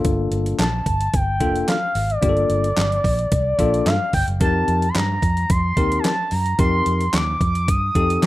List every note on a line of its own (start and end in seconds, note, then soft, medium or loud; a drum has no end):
0.00 0.65 A#3 medium
0.00 0.65 D4 medium
0.00 0.65 F4 medium
0.00 0.65 A4 loud
0.05 0.26 G1 loud
0.05 kick loud
0.05 closed hi-hat loud
0.31 0.53 G1 loud
0.31 closed hi-hat medium
0.46 closed hi-hat medium
0.59 0.80 A#1 loud
0.59 1.16 A5 medium
0.59 snare loud
0.59 clap loud
0.59 closed hi-hat medium
0.86 1.07 G1 loud
0.86 kick medium
0.86 closed hi-hat medium
1.01 closed hi-hat medium
1.14 1.40 G1 loud
1.14 1.68 G5 loud
1.14 kick loud
1.14 closed hi-hat loud
1.40 1.62 F1 loud
1.40 1.74 A#3 medium
1.40 1.75 D4 medium
1.40 1.75 F4 medium
1.40 1.75 A4 medium
1.40 kick medium
1.40 closed hi-hat medium
1.56 closed hi-hat medium
1.68 2.12 F5 medium
1.68 snare loud
1.68 clap medium
1.68 closed hi-hat medium
1.95 2.16 G#1 medium
1.95 open hi-hat medium
2.10 3.88 D5 medium
2.10 closed hi-hat medium
2.22 2.44 G1 loud
2.22 2.67 A#3 medium
2.22 2.67 D4 medium
2.22 2.67 F4 medium
2.22 2.29 G4 medium
2.22 kick loud
2.22 closed hi-hat loud
2.29 2.71 A4 medium
2.37 closed hi-hat soft
2.50 2.71 G1 loud
2.50 closed hi-hat medium
2.64 closed hi-hat medium
2.77 2.98 G1 medium
2.77 snare loud
2.77 clap loud
2.77 closed hi-hat medium
2.92 closed hi-hat soft
3.04 3.26 A#1 loud
3.04 kick medium
3.04 open hi-hat medium
3.19 closed hi-hat medium
3.32 3.53 C2 medium
3.32 kick loud
3.32 closed hi-hat loud
3.59 3.80 A#1 medium
3.59 3.93 A#3 medium
3.59 3.93 D4 medium
3.59 3.93 F4 medium
3.59 3.93 A4 loud
3.59 kick medium
3.59 closed hi-hat medium
3.74 closed hi-hat medium
3.86 3.97 G2 loud
3.86 4.13 F5 medium
3.86 snare loud
3.86 clap medium
3.86 closed hi-hat medium
4.13 4.25 G1 loud
4.13 4.26 G5 medium
4.13 kick loud
4.13 open hi-hat medium
4.28 4.38 F#1 loud
4.28 closed hi-hat medium
4.40 4.62 F2 loud
4.40 4.86 C4 medium
4.40 4.86 D#4 medium
4.40 4.86 G4 medium
4.40 4.86 A#4 medium
4.40 4.90 A5 loud
4.40 kick loud
4.40 closed hi-hat medium
4.68 4.89 F2 loud
4.68 closed hi-hat medium
4.82 closed hi-hat medium
4.89 4.97 C6 medium
4.95 5.17 G2 loud
4.95 5.52 A#5 loud
4.95 snare loud
4.95 clap loud
4.95 closed hi-hat medium
5.22 5.44 F2 medium
5.22 kick medium
5.22 closed hi-hat medium
5.37 closed hi-hat medium
5.50 5.71 F2 loud
5.50 6.00 C6 loud
5.50 kick loud
5.50 closed hi-hat loud
5.77 5.98 D#2 loud
5.77 6.11 C4 medium
5.77 6.11 D#4 medium
5.77 6.11 G4 medium
5.77 6.11 A#4 medium
5.77 kick medium
5.77 closed hi-hat medium
5.92 closed hi-hat medium
5.99 6.06 G#5 medium
6.04 6.34 A5 loud
6.04 snare loud
6.04 clap medium
6.04 closed hi-hat medium
6.31 6.53 F#2 loud
6.31 6.59 A#5 loud
6.31 open hi-hat medium
6.46 closed hi-hat medium
6.59 6.80 F2 loud
6.59 7.04 C4 medium
6.59 7.04 D#4 medium
6.59 7.04 G4 medium
6.59 7.04 A#4 medium
6.59 7.16 C6 loud
6.59 kick loud
6.59 closed hi-hat loud
6.86 7.08 F2 loud
6.86 closed hi-hat medium
7.01 closed hi-hat medium
7.13 7.35 D#2 medium
7.13 7.71 D6 loud
7.13 snare loud
7.13 clap loud
7.13 closed hi-hat medium
7.41 7.68 F2 loud
7.41 kick medium
7.41 closed hi-hat medium
7.55 closed hi-hat medium
7.68 7.89 G2 loud
7.68 8.26 D#6 loud
7.68 kick loud
7.68 closed hi-hat loud
7.95 8.16 F2 loud
7.95 8.26 C4 medium
7.95 8.26 D#4 medium
7.95 8.26 G4 medium
7.95 8.26 A4 medium
7.95 kick medium
7.95 closed hi-hat medium
8.10 closed hi-hat medium
8.22 8.26 F3 loud
8.22 snare loud
8.22 closed hi-hat medium